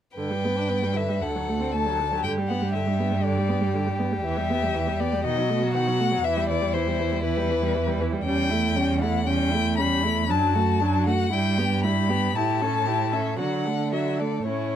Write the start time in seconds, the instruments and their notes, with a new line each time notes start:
0.17 cello G2, viola D3, violin B4 G5
0.31 viola G3
0.44 viola B3
0.57 viola D4
0.70 viola B3
0.83 viola G3
0.96 viola D3, violin E5
1.09 viola G3
1.22 cello D2, viola D3, violin A4 F#5
1.35 viola F#3
1.49 viola A3
1.60 viola C4
1.72 viola A3, violin A5
1.86 viola F#3
1.99 viola D3
2.12 viola F#3
2.23 cello G2, viola D3, violin G4 G5
2.38 viola G3
2.48 viola B3, violin F#5
2.62 viola G3
2.73 viola D3, violin E5
2.87 viola G3
2.99 viola B3
3.12 viola G3
3.24 viola D3, violin D5
3.37 viola G3
3.49 viola B3
3.61 viola G3
3.74 viola D3
3.87 viola G3
3.99 viola B3
4.12 viola G3
4.24 cello E2, viola E3, violin E5
4.37 viola G3
4.50 viola B3
4.63 viola G3
4.75 viola E3
4.87 viola G3
5.00 viola B3, violin D5
5.13 viola G3
5.24 cello B2, viola D#3, violin F#4 D#5
5.38 viola F#3
5.50 viola A3
5.63 viola F#3
5.74 viola D#3, violin F#5
5.87 viola F#3
6.00 viola A3
6.12 viola F#3
6.24 cello E2, viola E3, violin E4 E5
6.36 viola G3
6.49 viola E3, violin D5
6.62 viola G3
6.74 viola E3, violin C5
6.87 viola G3
6.99 viola E3
7.12 viola G3
7.24 viola E3, violin B4
7.37 viola G3
7.50 viola E3
7.62 viola G3
7.74 viola E3
7.87 viola G3
8.00 viola E3
8.13 viola G3
8.25 cello E2, viola G3, violin C#4 G5
8.50 viola A3, violin E4
8.76 viola G3, violin C#4
9.02 viola A3, violin E4 F#5
9.26 viola G3, violin C#4 G5
9.51 viola A3, violin E4
9.78 viola G3, violin C#4 B5
10.03 viola A3, violin E4
10.29 cello F#2, viola F#3, violin D4 A5
10.55 viola A3, violin F#4
10.81 viola F#3, violin D4
11.06 viola A3, violin F#4 F#5
11.32 cello G2, viola G3, violin E4 G5
11.58 viola B3, violin G4
11.84 viola G3, violin E4 B5
12.10 viola B3, violin G4
12.36 cello A2, viola E4, violin G4 A5
12.61 viola C#4, violin A4
12.87 viola E4, violin G4
13.13 viola C#4, violin A4 E5
13.39 cello D3, viola F#3, violin F#4 F#5
13.66 viola A3, violin A4
13.92 viola F#3, violin F#4 E5
14.19 viola A3, violin A4 D5
14.47 cello A2, viola C#4, violin E4 C#5